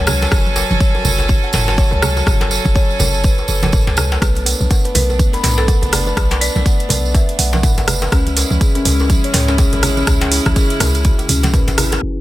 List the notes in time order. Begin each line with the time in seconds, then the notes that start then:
Already playing: C#2 F#3 C#4 A4 G#5
0.07 F#4, cross-stick, tambourine, low conga
0.22 tambourine, muted conga, djembe slap
0.32 F#1 F#4, kick, cross-stick, tambourine, djembe tone
0.45 tambourine, muted conga
0.56 tambourine, djembe tone
0.70 F#1, tambourine, muted conga, high conga
0.80 C#5, kick, tambourine
0.95 F#4, tambourine, djembe tone
1.05 F#1, tambourine, muted conga, djembe bass, low conga
1.19 tambourine, djembe tone
1.29 kick, tambourine, muted conga, high conga
1.44 F#5, tambourine
1.53 F#1, mid tom, tambourine, muted conga, djembe slap, djembe tone
1.68 F#4, tambourine, djembe slap
1.78 C#5, kick, tambourine, djembe tone
1.91 C#2, tambourine, muted conga, djembe bass
2.02 A4, cross-stick, tambourine, low conga
2.17 F#4, tambourine, muted conga, djembe tone
2.27 F#1, kick, cross-stick, mid tom, tambourine
2.41 tambourine, djembe slap, muted conga, djembe tone
2.51 A4, tambourine
2.65 F#1, kick, tambourine, muted conga, high conga
2.75 C#5, kick, tambourine, djembe tone
2.90 tambourine
2.99 F#1 A4, tambourine, muted conga, djembe tone, djembe bass, low conga
3.14 tambourine
3.23 B4, kick, tambourine, muted conga
3.38 tambourine, djembe tone
3.48 F#1 A4, tambourine, muted conga
3.62 tambourine, djembe slap, high conga, djembe tone, low conga
3.72 A4, kick, mid tom, tambourine, djembe bass
3.87 C#2, tambourine, djembe slap, muted conga
3.97 A4, cross-stick, tambourine, djembe tone, low conga
4.12 tambourine, djembe slap, muted conga
4.22 B1 A3 B3 D4 B4, kick, cross-stick, closed hi-hat, tambourine
4.35 closed hi-hat, tambourine, muted conga
4.46 open hi-hat, tambourine, djembe tone
4.61 B1, tambourine, muted conga, high conga
4.70 F#5, kick, closed hi-hat, tambourine, djembe tone
4.84 B4, closed hi-hat, tambourine
4.95 B1 B4, open hi-hat, tambourine, muted conga, djembe bass, low conga
5.10 tambourine, djembe tone
5.19 kick, closed hi-hat, tambourine, muted conga, high conga
5.33 B5, closed hi-hat, tambourine, djembe tone
5.43 B1, mid tom, open hi-hat, tambourine, djembe slap, muted conga
5.58 A4 B4, tambourine, djembe slap
5.68 F#5, kick, closed hi-hat, tambourine, djembe tone
5.82 F#1, closed hi-hat, tambourine, muted conga, djembe bass
5.92 D5, cross-stick, open hi-hat, tambourine, djembe tone, low conga
6.06 B4, tambourine, muted conga
6.17 B1, kick, cross-stick, closed hi-hat, tambourine
6.31 closed hi-hat, tambourine, muted conga, djembe slap, djembe tone
6.41 B4 D5, open hi-hat, tambourine
6.56 B1, tambourine, muted conga, high conga, djembe tone
6.66 F#5, kick, closed hi-hat, tambourine
6.80 closed hi-hat, tambourine
6.89 B1 D5, open hi-hat, tambourine, muted conga, djembe tone, djembe bass, low conga
7.05 tambourine
7.15 E5, kick, closed hi-hat, tambourine, muted conga, djembe tone
7.29 closed hi-hat, tambourine
7.39 B1 F#5, open hi-hat, tambourine, muted conga
7.53 tambourine, djembe slap, djembe tone, high conga, low conga
7.63 F#5, kick, closed hi-hat, mid tom, tambourine, djembe bass
7.78 F#1, closed hi-hat, tambourine, muted conga, djembe slap, djembe tone
7.88 B4, cross-stick, open hi-hat, tambourine, low conga
8.02 tambourine, djembe slap, muted conga
8.12 C#2 C#3 G#3 C#4 E4, kick, cross-stick, closed hi-hat, tambourine, djembe tone
8.27 closed hi-hat, tambourine, muted conga
8.37 open hi-hat, tambourine, djembe tone
8.50 C#2, tambourine, muted conga, high conga
8.61 G#4, kick, closed hi-hat, tambourine
8.75 C#4, closed hi-hat, tambourine, djembe tone
8.85 C#2, open hi-hat, tambourine, muted conga, low conga, djembe bass
8.99 tambourine, djembe tone
9.10 kick, closed hi-hat, tambourine, muted conga, high conga
9.24 C#5, closed hi-hat, tambourine
9.34 C#2, mid tom, open hi-hat, tambourine, djembe slap, muted conga, djembe tone
9.48 C#4, tambourine, djembe slap
9.58 G#4, kick, closed hi-hat, tambourine, djembe tone
9.73 G#1, closed hi-hat, tambourine, muted conga, djembe bass
9.83 E4, cross-stick, open hi-hat, tambourine, low conga
9.97 C#4, tambourine, muted conga, djembe tone
10.07 C#2, kick, cross-stick, closed hi-hat, mid tom, tambourine
10.21 closed hi-hat, tambourine, muted conga, djembe slap, high conga, djembe tone
10.32 E4, open hi-hat, tambourine
10.46 C#2, kick, cross-stick, closed hi-hat, tambourine, muted conga, high conga
10.56 G#4, kick, closed hi-hat, tambourine, djembe tone
10.70 closed hi-hat, tambourine
10.80 C#2 E4, cross-stick, open hi-hat, tambourine, muted conga, djembe tone, low conga, djembe bass
10.95 closed hi-hat, tambourine
11.04 F#4, kick, closed hi-hat, tambourine, muted conga
11.19 closed hi-hat, tambourine, djembe tone
11.29 C#2 C#4, open hi-hat, tambourine, muted conga, low conga
11.43 closed hi-hat, tambourine, djembe slap, high conga, djembe tone, low conga
11.54 B4, kick, closed hi-hat, mid tom, tambourine, djembe bass
11.68 G#1, closed hi-hat, tambourine, muted conga, djembe slap
11.78 E4, cross-stick, open hi-hat, tambourine, djembe tone, low conga
11.92 closed hi-hat, tambourine, muted conga, djembe slap
12.02 F#1 F#3 C#4 F#4 A4 G#5